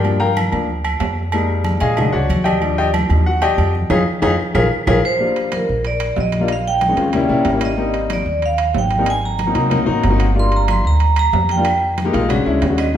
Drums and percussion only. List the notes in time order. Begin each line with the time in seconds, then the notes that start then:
0.05 high conga, low agogo
0.21 high conga
0.37 high conga, low agogo, claves
0.52 high conga, low agogo
0.69 high conga
0.85 high conga, low agogo, claves
1.00 high conga, low timbale, low agogo
1.32 high conga, low agogo, claves
1.49 high conga
1.64 high conga, low agogo
1.80 high conga, low agogo
1.97 high conga, low conga, low agogo, claves
2.15 high conga
2.30 high conga, low agogo
2.46 high conga, low agogo, claves
2.62 high conga, low agogo
2.78 high conga
2.94 high conga, low agogo, claves
3.10 high conga, low agogo
3.27 high conga
3.42 high conga, low agogo, claves
3.58 low agogo
3.75 high conga
3.90 high conga, high timbale, claves
4.22 high conga, high timbale, claves
4.55 high conga, high timbale, claves
4.87 high conga, high timbale, claves
5.21 high conga
5.36 high conga, high timbale
5.52 high conga, high timbale, low timbale
5.69 high conga
5.85 high conga, high timbale
6.00 high conga, high timbale
6.16 high conga, low timbale
6.32 high conga, high timbale
6.48 high timbale
6.66 high conga
6.81 high conga, high timbale, low timbale
6.97 high conga, high timbale
7.13 high conga, low conga, high timbale
7.30 high conga, low conga
7.45 high conga, high timbale, low timbale
7.61 high conga, high timbale
7.78 high conga
7.94 high conga, high timbale
8.10 high conga, high timbale, low timbale
8.27 high conga
8.42 high conga, high timbale
8.58 high conga, high timbale
8.74 high conga, low timbale
8.90 high conga, high timbale
9.06 high timbale
9.23 high conga
9.39 high conga, high timbale, low timbale
9.55 high timbale
9.71 high conga, low conga, high timbale
9.88 high conga
10.04 high conga, high timbale, low timbale
10.20 high conga, high timbale
10.37 high conga
10.52 high conga, high timbale
10.68 high conga, high timbale, low timbale, claves
10.85 high conga
11.00 high conga, high timbale
11.16 high conga, high timbale, claves
11.33 high conga, low timbale
11.49 high conga, high timbale
11.65 high conga, high timbale, claves
11.81 high conga
11.98 high conga, high timbale, low timbale
12.14 high timbale
12.30 high conga, low conga, high timbale, claves
12.46 high conga
12.62 high timbale, low timbale
12.78 high conga, high timbale, claves